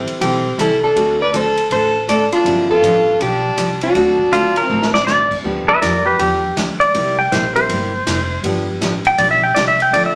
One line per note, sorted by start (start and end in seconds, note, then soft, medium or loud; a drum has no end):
0.00 0.18 A3 medium
0.00 0.18 C4 medium
0.00 0.21 C4 medium
0.00 0.19 E4 medium
0.00 0.20 G4 medium
0.07 ride soft
0.19 0.53 B1 medium
0.19 0.42 E3 medium
0.19 0.43 G3 medium
0.19 0.41 A3 medium
0.19 0.41 C4 soft
0.19 0.43 C4 medium
0.19 0.56 C4 medium
0.19 0.42 E4 soft
0.19 0.43 E4 medium
0.19 0.60 G4 medium
0.19 0.42 A4 medium
0.19 0.43 A4 medium
0.19 ride medium
0.58 0.90 C2 medium
0.58 0.69 E3 medium
0.58 0.70 G3 medium
0.58 0.70 C4 medium
0.58 0.70 E4 medium
0.58 0.81 E4 medium
0.58 0.70 A4 medium
0.58 0.83 A4 medium
0.58 cross-stick medium
0.58 hi-hat pedal medium
0.58 ride medium
0.82 1.17 D4 medium
0.82 1.21 A4 medium
0.94 1.56 D2 medium
0.94 1.17 D3 medium
0.94 1.16 A3 medium
0.94 1.18 A3 medium
0.94 1.17 C4 soft
0.94 1.18 C4 medium
0.94 1.17 D4 medium
0.94 1.17 F#4 medium
0.94 1.18 F#4 medium
0.94 1.18 A4 medium
0.94 ride medium
1.20 1.35 B4 medium
1.20 1.36 D5 loud
1.33 1.45 D3 medium
1.33 1.45 A3 medium
1.33 1.45 C4 medium
1.33 1.45 F#4 medium
1.33 1.71 A4 medium
1.33 1.45 A4 medium
1.33 1.71 C5 loud
1.33 hi-hat pedal soft
1.33 ride medium
1.57 ride soft
1.70 2.30 A1 medium
1.70 1.92 D3 medium
1.70 1.92 A3 medium
1.70 1.92 C4 medium
1.70 1.92 F#4 medium
1.70 1.93 A4 medium
1.70 2.06 A4 medium
1.70 2.09 C5 loud
1.70 ride soft
2.07 2.19 D3 medium
2.07 2.20 A3 medium
2.07 2.20 C4 medium
2.07 2.20 F#4 medium
2.07 2.20 A4 medium
2.07 2.31 A4 medium
2.07 2.33 D5 medium
2.07 cross-stick medium
2.07 hi-hat pedal medium
2.07 ride medium
2.32 2.68 D4 medium
2.32 2.71 F4 medium
2.32 ride soft
2.44 2.75 G1 medium
2.44 2.67 D3 medium
2.44 2.67 F3 medium
2.44 2.66 F#3 medium
2.44 2.66 A#3 medium
2.44 2.68 B3 medium
2.44 2.67 C#4 medium
2.44 2.68 D4 medium
2.44 2.67 E4 medium
2.44 2.68 G4 medium
2.44 ride medium
2.68 3.49 G3 medium
2.68 3.49 B3 medium
2.68 3.49 D4 medium
2.68 3.50 F4 medium
2.68 3.18 F4 medium
2.68 3.22 A4 loud
2.82 3.14 A1 medium
2.82 2.94 D3 medium
2.82 2.94 F3 medium
2.82 2.95 B3 medium
2.82 2.95 D4 medium
2.82 2.95 G4 medium
2.82 hi-hat pedal medium
2.82 ride medium
3.20 3.52 B1 medium
3.20 3.41 D3 medium
3.20 3.41 F3 medium
3.20 3.42 B3 medium
3.20 3.42 D4 medium
3.20 3.78 D4 medium
3.20 3.42 G4 medium
3.20 3.78 G4 medium
3.20 ride medium
3.56 3.89 C2 medium
3.56 3.68 D3 medium
3.56 3.69 F3 medium
3.56 3.69 B3 medium
3.56 3.69 D4 medium
3.56 3.69 G4 medium
3.56 cross-stick medium
3.56 hi-hat pedal medium
3.56 ride medium
3.81 4.64 D4 medium
3.81 4.65 F#4 medium
3.81 ride soft
3.94 4.55 D2 medium
3.94 4.17 D3 medium
3.94 4.99 F#3 medium
3.94 4.17 A3 medium
3.94 4.99 C4 medium
3.94 4.17 C4 medium
3.94 4.99 D4 medium
3.94 4.17 F#4 medium
3.94 4.99 F#4 medium
3.94 4.17 A4 medium
3.94 ride medium
4.19 kick medium
4.31 4.43 D3 medium
4.31 4.44 A3 medium
4.31 4.44 C4 medium
4.31 4.56 F4 medium
4.31 4.44 F#4 medium
4.31 4.44 A4 medium
4.31 hi-hat pedal soft
4.31 ride medium
4.56 4.93 A#4 medium
4.56 ride soft
4.64 5.04 C4 medium
4.64 5.04 E4 medium
4.69 5.29 A1 medium
4.69 4.91 D3 medium
4.69 4.91 A3 medium
4.69 4.92 C4 medium
4.69 4.92 F#4 medium
4.69 4.92 A4 medium
4.82 snare medium
4.94 5.06 D5 medium
4.94 snare medium
5.06 5.18 D3 medium
5.06 5.18 A3 medium
5.06 5.18 C4 medium
5.06 5.19 F#4 medium
5.06 5.19 A4 medium
5.06 5.37 D5 medium
5.06 snare medium
5.06 hi-hat pedal medium
5.31 kick medium
5.31 crash medium
5.43 5.66 D2 medium
5.43 5.66 D3 medium
5.43 5.66 F3 medium
5.43 6.48 G3 medium
5.43 6.48 B3 medium
5.43 5.66 B3 medium
5.43 6.49 D4 soft
5.43 5.66 D4 medium
5.43 6.49 F4 soft
5.43 5.67 G4 medium
5.43 6.49 G4 medium
5.68 5.82 B4 medium
5.68 5.82 E5 medium
5.68 muted upright bass stroke soft
5.81 6.19 F2 medium
5.81 5.93 D3 medium
5.81 5.94 F3 medium
5.81 5.94 B3 medium
5.81 5.94 D4 medium
5.81 5.94 G4 medium
5.81 6.05 A#4 medium
5.81 6.05 D5 medium
5.81 snare medium
5.81 hi-hat pedal medium
5.81 ride medium
6.06 6.18 G4 medium
6.06 6.19 B4 medium
6.19 6.56 E2 medium
6.19 6.41 D3 medium
6.19 6.41 F3 medium
6.19 6.41 B3 medium
6.19 6.42 D4 medium
6.19 6.56 G4 loud
6.19 6.42 G4 medium
6.19 ride medium
6.56 6.94 D2 medium
6.56 6.68 D3 medium
6.56 6.68 F3 medium
6.56 6.68 B3 medium
6.56 6.68 D4 medium
6.56 6.68 G4 medium
6.56 snare medium
6.56 hi-hat pedal medium
6.56 ride medium
6.80 7.17 D5 medium
6.80 ride soft
6.94 7.31 C2 medium
6.94 7.16 C3 medium
6.94 7.15 G3 medium
6.94 7.16 G3 medium
6.94 7.16 A#3 medium
6.94 7.16 C4 medium
6.94 7.16 E4 medium
6.94 7.16 G4 medium
6.94 ride medium
7.19 7.32 G5 medium
7.32 7.68 A#1 medium
7.32 7.43 C3 medium
7.32 7.43 G3 medium
7.32 7.43 A#3 medium
7.32 7.43 E4 medium
7.32 7.44 G4 medium
7.32 7.55 C5 medium
7.32 snare medium
7.32 hi-hat pedal soft
7.32 ride medium
7.54 7.67 G3 medium
7.54 7.67 A#3 medium
7.54 7.68 C4 medium
7.54 7.68 E4 medium
7.54 7.68 A#4 medium
7.54 8.41 C5 medium
7.54 ride soft
7.69 8.06 G1 medium
7.69 7.91 C3 medium
7.69 7.91 G3 medium
7.69 7.91 A#3 medium
7.69 7.92 E4 medium
7.69 7.92 G4 medium
7.69 ride medium
8.07 8.43 F1 medium
8.07 8.18 C3 medium
8.07 8.18 G3 medium
8.07 8.19 A#3 medium
8.07 8.19 E4 medium
8.07 8.19 G4 medium
8.07 snare medium
8.07 hi-hat pedal medium
8.07 ride medium
8.43 8.80 G1 medium
8.43 8.66 D3 medium
8.43 8.66 F3 medium
8.43 9.47 G3 medium
8.43 9.48 B3 medium
8.43 8.66 B3 medium
8.43 9.48 D4 soft
8.43 8.67 D4 medium
8.43 9.48 F4 medium
8.43 9.49 G4 medium
8.43 8.67 G4 medium
8.43 ride medium
8.81 9.17 A1 medium
8.81 8.93 D3 medium
8.81 8.93 F3 medium
8.81 8.93 B3 medium
8.81 8.93 D4 medium
8.81 8.93 G4 medium
8.81 snare medium
8.81 hi-hat pedal medium
8.81 ride medium
9.05 9.19 G5 medium
9.05 ride soft
9.18 9.55 B1 medium
9.18 9.40 D3 medium
9.18 9.40 F3 medium
9.18 9.41 B3 medium
9.18 9.41 D4 medium
9.18 9.41 G4 medium
9.18 9.30 D5 medium
9.18 ride medium
9.31 9.43 E5 medium
9.44 9.56 G5 medium
9.55 9.93 C2 medium
9.55 9.68 D3 medium
9.55 9.68 F3 medium
9.55 9.68 B3 medium
9.55 9.68 D4 medium
9.55 9.68 G4 medium
9.55 9.67 D5 loud
9.55 snare medium
9.55 hi-hat pedal medium
9.55 ride medium
9.68 9.80 E5 medium
9.80 9.94 G5 medium
9.80 ride soft
9.92 10.15 D2 medium
9.92 10.15 D3 medium
9.92 10.15 F3 medium
9.92 10.14 A3 medium
9.92 10.14 C4 medium
9.92 10.15 C4 medium
9.92 10.14 D4 medium
9.92 10.15 D4 medium
9.92 10.15 F4 medium
9.92 10.15 A4 medium
9.92 10.05 D5 loud
9.92 ride medium
10.06 10.15 E5 medium